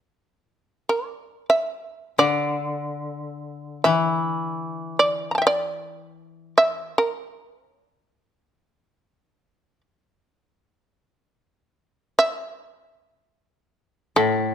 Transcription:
0.89 1.45 D5 medium
1.50 2.16 E5 medium
2.18 5.28 D3 medium
2.18 3.81 D5 medium
3.84 6.90 E3 medium
3.84 4.96 E5 medium
4.99 5.31 D5 medium
5.31 5.38 A5 soft
5.31 5.34 A#5 soft
5.38 5.46 E5 soft
5.38 5.55 G5 soft
5.47 6.55 D5 medium
6.58 6.95 E5 medium
6.98 7.41 A#4 medium
7.41 7.57 B4 medium
7.57 7.73 C5 medium
7.73 7.89 C#5 medium
7.89 9.81 D5 medium
12.19 13.20 E5 loud
13.20 13.44 D#5 loud
13.44 14.14 D5 loud
14.16 14.54 A2 medium
14.16 14.54 A4 medium

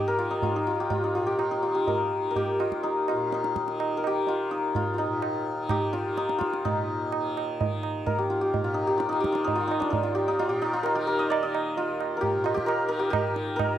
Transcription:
0.00 0.64 D#2 medium
0.00 1.15 A#2 medium
0.00 0.13 D#3 medium
0.00 0.30 D#4 medium
0.00 0.18 F4 medium
0.00 0.80 G4 medium
0.08 1.87 A#4 loud
0.13 1.65 D#3 medium
0.19 0.43 F4 medium
0.31 0.55 D#4 medium
0.42 0.66 F4 medium
0.42 tabla tin medium
0.42 tabla ge medium
0.56 1.03 D#4 medium
0.64 2.61 D#2 medium
0.64 0.90 F4 medium
0.80 1.26 G4 medium
0.90 1.14 F4 medium
0.90 tabla tin medium
0.90 tabla ge medium
1.04 1.50 D#4 medium
1.15 3.12 A#2 medium
1.15 1.38 F4 medium
1.26 1.74 G4 medium
1.38 1.62 F4 medium
1.38 tabla na medium
1.51 2.83 D#4 medium
1.63 2.15 D#3 medium
1.63 2.59 F4 medium
1.75 2.36 G4 medium
1.87 2.30 A#4 medium
1.87 tabla tin medium
1.87 tabla ge medium
2.15 3.61 D#3 medium
2.31 3.97 A#4 medium
2.36 4.06 G4 medium
2.36 tabla tin medium
2.36 tabla ge medium
2.60 4.56 D#2 medium
2.60 3.09 F4 medium
2.60 tabla na medium
2.72 tabla ke medium
2.83 3.34 D#4 medium
2.83 tabla tin medium
3.08 4.28 F4 medium
3.08 tabla na medium
3.13 5.04 A#2 medium
3.32 4.51 D#4 medium
3.32 tabla te medium
3.44 tabla te medium
3.56 tabla ke medium
3.61 4.07 D#3 medium
3.68 tabla te medium
3.80 tabla na medium
3.97 6.80 A#4 medium
4.04 5.55 D#3 medium
4.04 5.70 G4 loud
4.04 tabla na medium
4.27 4.75 F4 medium
4.27 tabla tin medium
4.51 4.98 D#4 medium
4.57 6.51 D#2 medium
4.75 4.93 F4 medium
4.75 tabla tin medium
4.75 tabla ge medium
4.94 5.92 F4 medium
4.98 6.17 D#4 medium
4.98 tabla na medium
5.05 6.64 A#2 medium
5.22 tabla na medium
5.55 6.03 D#3 medium
5.69 8.18 G4 loud
5.69 tabla na medium
5.69 tabla ge medium
5.93 6.38 F4 medium
5.93 tabla te medium
6.03 7.13 D#3 medium
6.17 6.64 D#4 medium
6.17 tabla te medium
6.29 tabla te medium
6.38 8.29 F4 medium
6.38 tabla ke medium
6.51 8.09 D#2 medium
6.51 tabla te medium
6.64 8.57 A#2 medium
6.64 8.74 D#4 medium
6.64 tabla tin loud
6.64 tabla ge loud
7.12 7.61 D#3 medium
7.12 tabla na medium
7.37 tabla na medium
7.61 9.07 D#3 medium
7.61 tabla tin medium
7.61 tabla ge medium
7.83 tabla na medium
8.06 10.00 D#2 medium
8.06 10.83 A#4 medium
8.06 tabla tin medium
8.06 tabla ge medium
8.18 8.41 G4 medium
8.30 8.64 F4 medium
8.41 8.87 G4 medium
8.54 10.47 A#2 medium
8.54 tabla tin medium
8.54 tabla ge medium
8.64 8.97 F4 medium
8.74 9.08 D#4 medium
8.87 9.20 G4 medium
8.98 9.32 F4 medium
8.98 tabla te medium
9.07 9.54 D#3 medium
9.07 9.44 D#4 medium
9.13 tabla te medium
9.20 10.14 G4 medium
9.20 tabla ke medium
9.32 9.55 F4 medium
9.32 tabla te medium
9.44 9.67 D#4 medium
9.44 tabla tin medium
9.44 tabla ge medium
9.54 10.95 D#3 medium
9.54 10.03 F4 medium
9.67 9.86 D#4 medium
9.71 tabla na medium
9.80 9.96 D4 medium
9.80 tabla ke medium
9.90 10.27 D#4 medium
9.90 tabla tin medium
9.90 tabla ge medium
10.00 11.89 D#2 medium
10.00 10.39 F4 medium
10.15 10.49 G4 medium
10.28 10.61 D#4 medium
10.39 10.73 F4 loud
10.39 tabla tin medium
10.47 12.35 A#2 medium
10.47 10.95 G4 medium
10.62 11.36 D#4 medium
10.62 tabla na medium
10.73 11.77 F4 loud
10.83 11.07 A#4 loud
10.83 tabla na medium
10.95 11.40 D#3 medium
10.95 12.20 G4 loud
11.07 12.16 A#4 loud
11.19 11.36 D#5 loud
11.30 11.49 D5 loud
11.30 tabla na medium
11.40 12.81 D#3 medium
11.40 13.78 D#5 loud
11.55 tabla na medium
11.77 12.43 F4 medium
11.77 tabla tin medium
11.90 13.74 D#2 medium
12.01 tabla na medium
12.17 12.66 A#4 medium
12.21 12.54 G4 loud
12.21 tabla tin medium
12.21 tabla ge medium
12.35 13.78 A#2 medium
12.44 13.78 F4 medium
12.44 tabla na medium
12.54 12.99 G4 loud
12.54 tabla ke medium
12.66 12.88 A#4 loud
12.66 tabla na medium
12.81 13.28 D#3 medium
12.88 13.56 A#4 loud
12.99 13.10 G4 medium
13.10 13.78 G4 loud
13.10 tabla na medium
13.10 tabla ge medium
13.28 13.78 D#3 medium
13.36 tabla te medium
13.56 13.78 A#4 loud
13.56 tabla na medium
13.56 tabla ge medium
13.74 13.78 D#2 medium

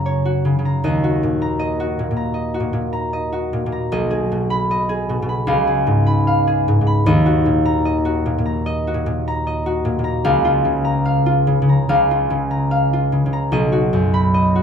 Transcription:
0.00 0.86 F#2 medium
0.00 0.44 C#3 medium
0.00 0.24 F#4 soft
0.00 0.64 A#5 medium
0.06 0.87 C#5 soft
0.25 1.02 F#4 medium
0.45 0.57 C#3 soft
0.59 0.88 C#3 soft
0.65 1.41 A#5 medium
0.84 3.96 D#2 medium
0.84 1.58 D#5 medium
1.04 1.79 F#4 medium
1.23 1.98 A#2 soft
1.42 2.15 A#5 medium
1.59 2.33 D#5 medium
1.80 2.53 F#4 medium
1.99 2.10 A#2 soft
2.11 2.59 A#2 soft
2.17 2.92 A#5 medium
2.34 3.12 D#5 medium
2.54 3.31 F#4 soft
2.60 2.72 A#2 soft
2.73 3.52 A#2 soft
2.93 3.71 A#5 medium
3.13 3.91 D#5 medium
3.32 3.95 F#4 soft
3.53 3.65 A#2 medium
3.66 3.96 A#2 soft
3.72 3.95 A#5 soft
3.92 5.51 B1 medium
3.92 4.70 D#5 medium
4.11 4.88 G#4 medium
4.32 5.08 B2 soft
4.50 5.28 B5 medium
4.71 5.52 D#5 medium
4.89 5.66 G#4 medium
5.09 5.21 B2 medium
5.22 5.52 B2 medium
5.29 6.05 B5 medium
5.47 7.09 C#2 medium
5.47 6.26 F5 medium
5.67 6.46 G#4 medium
5.87 6.67 G#2 medium
6.06 6.86 B5 medium
6.27 7.10 F5 medium
6.47 7.10 G#4 medium
6.68 6.80 G#2 medium
6.81 7.10 G#2 soft
6.87 7.10 B5 medium
7.06 10.26 D#2 medium
7.06 7.84 D#5 medium
7.26 8.04 F#4 medium
7.46 8.24 A#2 medium
7.65 8.44 A#5 medium
7.85 8.65 D#5 medium
8.05 8.86 F#4 medium
8.26 8.37 A#2 medium
8.38 8.93 A#2 soft
8.46 9.26 A#5 soft
8.66 9.46 D#5 medium
8.87 9.65 F#4 soft
8.94 9.05 A#2 soft
9.06 9.84 A#2 medium
9.28 10.03 A#5 medium
9.47 10.27 D#5 medium
9.66 10.27 F#4 medium
9.85 9.98 A#2 medium
9.99 10.27 A#2 soft
10.04 10.83 A#5 medium
10.24 11.88 C#2 medium
10.24 11.04 F5 medium
10.45 11.25 F4 medium
10.65 11.46 C#3 medium
10.85 11.68 A#5 medium
11.05 11.88 F5 medium
11.26 12.10 F4 medium
11.47 11.61 C#3 medium
11.62 12.29 C#3 medium
11.69 12.50 A#5 medium
11.89 13.55 C#2 medium
11.89 12.70 F5 medium
12.11 12.92 F4 medium
12.30 13.11 C#3 medium
12.51 13.32 A#5 medium
12.71 13.55 F5 medium
12.93 13.56 F4 medium
13.12 13.25 C#3 medium
13.26 13.55 C#3 soft
13.33 13.55 A#5 medium
13.52 14.63 B1 medium
13.52 14.33 D#5 medium
13.72 14.54 F#4 medium
13.93 14.63 F#2 medium
14.14 14.63 B5 medium
14.34 14.63 D#5 medium
14.55 14.63 F#4 medium

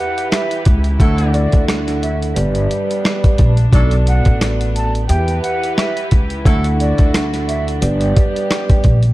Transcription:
0.00 0.99 E3 medium
0.00 2.33 E4 medium
0.00 0.58 G4 loud
0.00 0.98 G4 medium
0.00 0.59 B4 medium
0.00 0.98 B4 medium
0.00 0.59 E5 loud
0.00 0.29 F#5 medium
0.18 closed hi-hat medium
0.31 0.62 E5 medium
0.31 cross-stick medium
0.31 snare loud
0.31 closed hi-hat medium
0.51 closed hi-hat medium
0.65 0.95 C#2 medium
0.65 kick medium
0.65 closed hi-hat medium
0.84 closed hi-hat soft
0.99 1.46 D2 loud
0.99 2.35 D3 medium
0.99 1.45 F#3 loud
0.99 1.31 D4 medium
0.99 2.35 D4 medium
0.99 1.45 E4 medium
0.99 2.35 F#4 medium
0.99 1.31 A4 medium
0.99 1.45 A4 loud
0.99 1.31 E5 medium
0.99 1.32 F#5 loud
0.99 kick loud
0.99 closed hi-hat medium
1.18 closed hi-hat medium
1.33 2.36 D4 medium
1.33 2.36 A4 medium
1.33 1.64 D5 medium
1.33 2.36 E5 medium
1.33 2.36 F#5 loud
1.33 closed hi-hat medium
1.52 2.32 D2 medium
1.52 kick medium
1.52 closed hi-hat medium
1.68 cross-stick medium
1.68 snare loud
1.68 closed hi-hat loud
1.87 snare soft
1.87 closed hi-hat medium
2.02 2.19 E5 medium
2.02 closed hi-hat medium
2.22 closed hi-hat medium
2.34 2.66 G1 loud
2.34 2.67 G3 loud
2.34 3.71 G3 medium
2.34 3.71 B3 medium
2.34 5.06 D4 loud
2.34 2.67 G4 medium
2.34 2.67 B4 loud
2.34 2.68 D5 loud
2.34 closed hi-hat loud
2.55 closed hi-hat medium
2.69 3.49 G3 medium
2.69 3.49 G4 medium
2.69 3.50 B4 medium
2.69 3.50 D5 loud
2.69 closed hi-hat medium
2.91 closed hi-hat medium
3.05 cross-stick medium
3.05 snare loud
3.05 closed hi-hat medium
3.24 kick loud
3.24 closed hi-hat medium
3.38 3.68 A#1 medium
3.38 kick medium
3.38 closed hi-hat medium
3.57 closed hi-hat soft
3.71 4.18 B1 loud
3.71 3.94 F#3 loud
3.71 5.08 A3 medium
3.71 4.99 B3 loud
3.71 5.08 B3 medium
3.71 3.94 D4 loud
3.71 4.99 F#4 medium
3.71 4.99 A4 medium
3.71 3.94 A4 loud
3.71 5.00 D5 loud
3.71 kick loud
3.71 closed hi-hat loud
3.91 closed hi-hat medium
4.07 4.38 F#5 medium
4.07 closed hi-hat medium
4.25 5.05 A1 medium
4.25 kick medium
4.25 closed hi-hat medium
4.41 cross-stick medium
4.41 snare loud
4.41 closed hi-hat loud
4.61 closed hi-hat medium
4.76 4.93 A5 medium
4.76 closed hi-hat medium
4.95 closed hi-hat medium
5.08 5.38 E2 loud
5.08 6.44 E3 medium
5.08 7.79 E4 medium
5.08 6.04 G4 loud
5.08 6.44 G4 medium
5.08 6.04 B4 medium
5.08 6.44 B4 loud
5.08 6.05 E5 loud
5.08 5.39 G5 medium
5.08 closed hi-hat loud
5.28 closed hi-hat medium
5.43 5.73 F#5 medium
5.43 closed hi-hat medium
5.64 closed hi-hat medium
5.76 6.07 E5 loud
5.76 cross-stick medium
5.76 snare loud
5.76 closed hi-hat medium
5.97 closed hi-hat medium
6.11 6.41 C#2 medium
6.11 kick medium
6.11 closed hi-hat medium
6.30 closed hi-hat soft
6.44 6.91 D2 loud
6.44 7.81 D3 medium
6.44 6.67 F#3 medium
6.44 6.76 D4 medium
6.44 9.13 D4 medium
6.44 6.67 E4 medium
6.44 7.80 F#4 medium
6.44 6.77 A4 medium
6.44 6.67 A4 loud
6.44 6.77 E5 medium
6.44 6.77 F#5 loud
6.44 kick loud
6.44 closed hi-hat medium
6.64 closed hi-hat medium
6.78 7.81 D4 medium
6.78 7.81 A4 medium
6.78 7.10 D5 medium
6.78 7.82 E5 medium
6.78 7.82 F#5 loud
6.78 closed hi-hat medium
6.98 7.78 D2 medium
6.98 kick medium
6.98 closed hi-hat medium
7.14 cross-stick medium
7.14 snare loud
7.14 closed hi-hat loud
7.33 snare soft
7.33 closed hi-hat medium
7.48 7.65 E5 medium
7.48 closed hi-hat medium
7.68 closed hi-hat medium
7.80 8.11 G1 loud
7.80 8.12 G3 medium
7.80 9.13 B3 medium
7.80 8.13 G4 medium
7.80 9.13 G4 medium
7.80 8.13 B4 medium
7.80 8.13 D5 loud
7.80 closed hi-hat loud
8.01 closed hi-hat medium
8.14 8.95 G3 medium
8.14 8.95 G4 medium
8.14 8.95 B4 medium
8.14 8.96 D5 loud
8.14 kick loud
8.14 closed hi-hat medium
8.36 closed hi-hat medium
8.51 cross-stick medium
8.51 snare loud
8.51 closed hi-hat medium
8.70 kick loud
8.70 closed hi-hat medium
8.84 9.13 A#1 medium
8.84 kick medium
8.84 closed hi-hat medium
9.03 closed hi-hat soft

